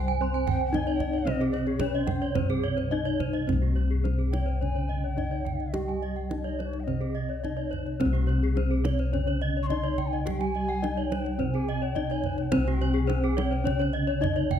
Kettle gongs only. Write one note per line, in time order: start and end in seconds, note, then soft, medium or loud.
0.00 2.34 C2 medium
0.00 0.70 G4 medium
0.74 0.82 C#4 soft
1.27 2.87 C4 medium
1.81 1.89 C#4 soft
2.35 4.00 G2 medium
2.91 2.99 C#4 soft
3.47 5.13 C4 medium
3.52 6.85 C2 loud
4.04 4.12 C#4 soft
5.17 5.25 C#4 medium
5.73 7.39 G4 medium
6.31 6.39 C#4 soft
6.88 8.53 C3 medium
7.44 7.52 C#4 soft
8.00 9.66 C4 medium
8.05 11.38 C2 loud
8.57 8.65 C#4 soft
9.70 9.78 C#4 soft
10.26 11.92 G4 medium
10.84 10.92 C#4 soft
11.40 13.06 C3 medium
11.97 12.05 C#4 soft
12.52 14.18 C4 medium
12.57 14.59 C2 loud
14.23 14.31 C#4 soft